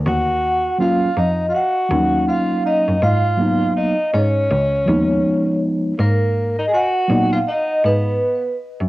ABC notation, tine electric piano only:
X:1
M:4/4
L:1/8
Q:"Swing 16ths" 1/4=81
K:G#dor
V:1 name="Tine electric piano"
z2 [F,A,CE] z2 [E,F,A,CD]3 | z [F,A,B,D] z3 [E,G,B,D]3 | z3 [F,A,B,D] z4 |]